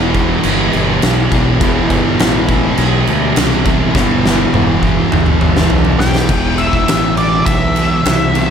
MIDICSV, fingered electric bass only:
0, 0, Header, 1, 2, 480
1, 0, Start_track
1, 0, Key_signature, 1, "minor"
1, 0, Tempo, 585366
1, 1323, Time_signature, 4, 2, 24, 8
1, 6972, End_track
2, 0, Start_track
2, 0, Title_t, "Fingered electric bass"
2, 0, Program_c, 0, 33
2, 0, Note_on_c, 0, 28, 91
2, 290, Note_off_c, 0, 28, 0
2, 364, Note_on_c, 0, 31, 91
2, 567, Note_off_c, 0, 31, 0
2, 606, Note_on_c, 0, 31, 90
2, 808, Note_off_c, 0, 31, 0
2, 847, Note_on_c, 0, 35, 87
2, 1048, Note_off_c, 0, 35, 0
2, 1081, Note_on_c, 0, 35, 93
2, 1285, Note_off_c, 0, 35, 0
2, 1316, Note_on_c, 0, 28, 97
2, 1522, Note_off_c, 0, 28, 0
2, 1560, Note_on_c, 0, 31, 92
2, 1764, Note_off_c, 0, 31, 0
2, 1801, Note_on_c, 0, 33, 87
2, 2207, Note_off_c, 0, 33, 0
2, 2281, Note_on_c, 0, 35, 101
2, 2484, Note_off_c, 0, 35, 0
2, 2521, Note_on_c, 0, 38, 97
2, 2724, Note_off_c, 0, 38, 0
2, 2759, Note_on_c, 0, 36, 88
2, 3166, Note_off_c, 0, 36, 0
2, 3238, Note_on_c, 0, 31, 102
2, 3645, Note_off_c, 0, 31, 0
2, 3711, Note_on_c, 0, 28, 93
2, 4120, Note_off_c, 0, 28, 0
2, 4198, Note_on_c, 0, 31, 90
2, 4402, Note_off_c, 0, 31, 0
2, 4435, Note_on_c, 0, 31, 98
2, 4640, Note_off_c, 0, 31, 0
2, 4678, Note_on_c, 0, 35, 88
2, 4882, Note_off_c, 0, 35, 0
2, 4920, Note_on_c, 0, 35, 90
2, 5123, Note_off_c, 0, 35, 0
2, 5159, Note_on_c, 0, 28, 97
2, 5608, Note_off_c, 0, 28, 0
2, 5642, Note_on_c, 0, 33, 90
2, 6090, Note_off_c, 0, 33, 0
2, 6118, Note_on_c, 0, 35, 92
2, 6569, Note_off_c, 0, 35, 0
2, 6604, Note_on_c, 0, 36, 90
2, 6972, Note_off_c, 0, 36, 0
2, 6972, End_track
0, 0, End_of_file